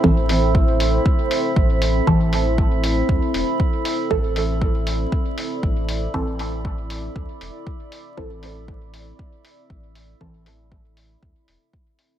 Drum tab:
HH |-o-o-o-o|-o-o-o-o|-o-o-o-o|-o-o-o-o|
BD |o-o-o-o-|o-o-o-o-|o-o-o-o-|o-o-o-o-|

HH |-o-o-o-o|-o-o-o-o|
BD |o-o-o-o-|o-o-o-o-|